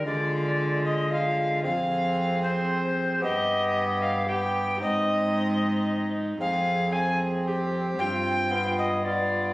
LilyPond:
<<
  \new Staff \with { instrumentName = "Recorder" } { \time 3/4 \key f \dorian \tempo 4 = 113 d''4. ees''8 f''4 | f''4. c''4. | ees''4. f''8 g''4 | ees''2~ ees''8 r8 |
f''4 aes''8 r4. | g''4. ees''8 d''4 | }
  \new Staff \with { instrumentName = "Viola" } { \time 3/4 \key f \dorian f'2 f'4 | aes'2. | g'2 g'4 | ees'2. |
aes'4 aes'4 g'4 | f'4 f'4 f'4 | }
  \new Staff \with { instrumentName = "Bassoon" } { \time 3/4 \key f \dorian aes2 aes4 | c'2. | b2 b4 | c'2~ c'8 r8 |
c'4 c'2 | c'4 b4 b4 | }
  \new Staff \with { instrumentName = "Cello" } { \clef bass \time 3/4 \key f \dorian d2. | f,2. | g,2. | aes,2. |
f,2. | g,2. | }
>>